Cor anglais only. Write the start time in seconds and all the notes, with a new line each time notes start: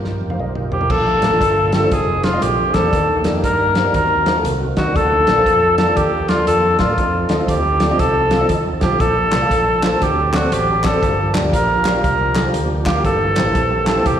0.73 G4
0.91 A4
1.73 A4
1.93 G#4
2.24 F4
2.42 G4
2.75 A4
3.44 A#4
3.95 A#4
4.78 F#4
4.96 A4
5.78 A4
5.97 G4
6.29 F4
6.48 A4
6.79 F4
7.49 G4
8.00 A4
8.82 G4
9.01 A4
9.84 A4
10.03 G4
10.35 F#4
10.53 G4
10.85 A4
11.54 A#4
12.04 A#4
12.87 G4
13.06 A4
13.88 A4
14.07 G4